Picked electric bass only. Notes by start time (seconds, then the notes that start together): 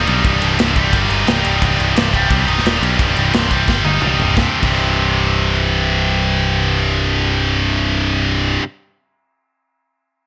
0.08 B1
0.25 C1
0.42 C1
0.59 C1
0.75 C1
0.93 G1
1.10 G1
1.27 C1
1.45 C1
1.62 C1
1.79 C1
1.96 C1
2.14 C1
2.30 C2
2.48 C1
2.64 D#1
2.81 B1
2.99 C1
3.16 C1
3.34 C1
3.51 C1
3.68 G1
3.85 G1
4.02 C1
4.19 C1
4.37 C1
4.63 C1